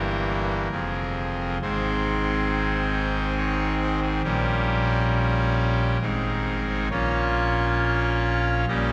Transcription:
0.00 0.68 G1 medium
0.00 0.68 G2 medium
0.00 0.68 E3 medium
0.00 0.68 A#3 medium
0.00 0.68 G4 medium
0.00 1.56 A#4 loud
0.72 1.58 F1 medium
0.72 1.58 F2 medium
0.72 1.58 F3 medium
0.72 1.58 C4 medium
0.72 1.58 G#4 medium
1.61 4.22 G#1 medium
1.61 4.22 G#2 medium
1.61 4.22 D#3 medium
1.61 4.22 C4 medium
1.61 4.01 G#4 medium
1.61 3.34 C5 loud
3.37 3.75 C#5 loud
3.81 4.00 C5 loud
4.03 4.22 G#4 loud
4.24 5.98 A#1 medium
4.24 5.98 A#2 medium
4.24 5.98 G3 medium
4.24 5.98 C#4 medium
4.24 5.98 G4 medium
4.24 6.87 A#4 loud
6.01 6.88 G#1 medium
6.01 6.88 G#2 medium
6.01 6.88 C4 medium
6.01 6.89 D#4 medium
6.01 6.88 G#4 medium
6.90 8.65 A#1 medium
6.90 8.65 A#2 medium
6.90 8.65 A#3 medium
6.90 8.65 C#4 medium
6.90 8.65 F4 medium
6.90 8.65 C#5 loud
8.68 8.92 A#1 medium
8.68 8.92 A#2 medium
8.68 8.92 G3 medium
8.68 8.92 C#4 medium
8.68 8.92 G4 medium
8.68 8.92 D#5 loud

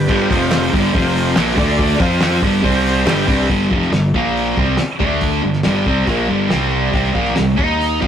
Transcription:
0.00 0.27 D4 medium
0.00 0.28 G4 medium
0.00 0.29 B4 medium
0.08 0.29 G1 loud
0.08 0.29 G2 loud
0.08 0.30 D3 medium
0.08 0.30 G3 loud
0.08 kick loud
0.08 crash loud
0.29 0.71 F1 loud
0.29 0.72 F2 loud
0.29 0.72 C3 loud
0.29 0.73 F3 medium
0.29 0.72 C4 medium
0.29 0.73 F4 medium
0.29 0.73 C5 medium
0.29 kick loud
0.29 clap medium
0.29 open hi-hat medium
0.51 snare loud
0.51 clap medium
0.51 open hi-hat medium
0.72 0.93 G1 loud
0.72 0.92 G2 loud
0.72 0.94 D3 loud
0.72 0.94 G3 loud
0.72 kick loud
0.72 open hi-hat medium
0.93 1.34 F1 medium
0.93 1.35 F2 medium
0.93 1.35 C3 loud
0.93 1.35 F3 loud
0.93 1.36 C4 medium
0.93 1.37 F4 medium
0.93 1.37 C5 medium
0.93 kick loud
0.93 open hi-hat medium
1.15 open hi-hat medium
1.36 1.56 A#1 loud
1.36 1.57 A#2 medium
1.36 1.59 F3 loud
1.36 1.59 A#3 loud
1.36 snare loud
1.36 clap loud
1.36 open hi-hat medium
1.55 1.98 D2 loud
1.55 1.99 D3 medium
1.55 1.99 A3 loud
1.55 1.99 D4 medium
1.55 2.00 A4 medium
1.55 1.99 D5 medium
1.55 kick loud
1.55 open hi-hat medium
1.59 2.00 D4 loud
1.79 kick loud
1.79 open hi-hat medium
1.99 2.40 F2 medium
1.99 2.42 F3 medium
1.99 2.42 C4 medium
1.99 2.43 C4 medium
1.99 2.43 F4 medium
1.99 2.43 F4 loud
1.99 2.43 C5 medium
1.99 kick loud
1.99 clap medium
1.99 open hi-hat medium
2.21 snare loud
2.21 clap medium
2.21 open hi-hat loud
2.42 2.63 G1 loud
2.42 2.63 G2 medium
2.42 2.62 D3 loud
2.42 2.62 G3 loud
2.42 kick loud
2.42 open hi-hat medium
2.62 3.04 C2 medium
2.62 3.05 C3 loud
2.62 3.06 G3 medium
2.62 3.07 C4 medium
2.62 3.06 C4 loud
2.62 3.03 G4 medium
2.62 3.07 C5 medium
2.62 kick loud
2.62 open hi-hat medium
2.85 open hi-hat medium
3.04 3.27 G1 medium
3.04 3.27 G2 medium
3.04 3.26 D3 loud
3.04 3.26 G3 loud
3.04 3.48 D4 medium
3.04 3.49 G4 medium
3.04 3.49 B4 medium
3.04 snare loud
3.04 clap loud
3.04 open hi-hat medium
3.26 3.48 C2 loud
3.26 3.48 C3 medium
3.26 3.49 G3 loud
3.26 3.48 C4 loud
3.26 kick loud
3.26 open hi-hat medium
3.48 3.70 G1 medium
3.48 3.70 G2 medium
3.48 3.70 D3 medium
3.48 3.70 G3 medium
3.48 kick medium
3.48 open hi-hat soft
3.61 snare soft
3.70 3.91 F1 medium
3.70 3.92 F2 medium
3.70 3.92 C3 medium
3.70 3.92 F3 medium
3.70 kick loud
3.82 snare soft
3.92 4.12 G1 medium
3.92 4.09 G2 medium
3.92 4.10 D3 medium
3.92 snare loud
3.92 open hi-hat medium
4.14 4.54 A#1 medium
4.14 4.56 A#2 medium
4.14 4.57 F3 medium
4.14 4.57 A#3 medium
4.14 kick loud
4.37 open hi-hat medium
4.57 4.77 C2 medium
4.57 4.78 C3 medium
4.57 4.78 G3 medium
4.57 4.79 C4 medium
4.57 kick loud
4.77 muted fingered electric bass stroke soft
4.77 muted distorted electric guitar stroke medium
4.77 snare loud
4.77 open hi-hat medium
4.99 5.40 D2 medium
4.99 5.41 D3 medium
4.99 5.42 A3 medium
4.99 5.42 D4 medium
4.99 kick loud
5.21 kick medium
5.21 open hi-hat medium
5.42 5.63 G1 medium
5.42 5.60 G2 medium
5.42 5.60 D3 medium
5.53 snare soft
5.63 5.85 G1 medium
5.63 5.85 G2 medium
5.63 5.85 D3 medium
5.63 5.86 G3 medium
5.63 snare loud
5.63 open hi-hat medium
5.86 6.06 C2 medium
5.86 6.07 C3 medium
5.86 6.07 G3 medium
5.86 6.08 C4 loud
5.86 kick medium
6.07 6.28 A#1 medium
6.07 6.29 A#2 medium
6.07 6.29 F3 medium
6.07 6.29 A#3 loud
6.07 kick loud
6.07 open hi-hat soft
6.28 6.50 G1 medium
6.28 6.50 G2 medium
6.28 6.48 D3 medium
6.28 6.48 G3 medium
6.49 6.91 C2 medium
6.49 6.92 C3 medium
6.49 6.93 G3 medium
6.49 6.93 C4 medium
6.49 snare loud
6.49 open hi-hat medium
6.93 7.14 C2 medium
6.93 7.13 C3 medium
6.93 7.14 G3 medium
6.93 7.14 C4 loud
6.93 kick loud
6.93 open hi-hat soft
7.04 snare soft
7.13 7.36 A#1 medium
7.13 7.35 A#2 medium
7.13 7.36 F3 medium
7.13 7.36 A#3 loud
7.13 kick loud
7.25 snare soft
7.36 7.57 C2 medium
7.36 7.56 C3 medium
7.36 7.56 G3 medium
7.36 snare loud
7.36 open hi-hat medium
7.56 7.99 D#2 medium
7.56 8.00 D#3 medium
7.56 8.00 A#3 loud
7.56 8.00 D#4 medium
7.56 kick loud
7.81 open hi-hat soft
8.01 8.07 F2 medium
8.01 8.07 F3 medium
8.01 8.07 C4 medium
8.01 8.07 F4 medium
8.01 kick loud

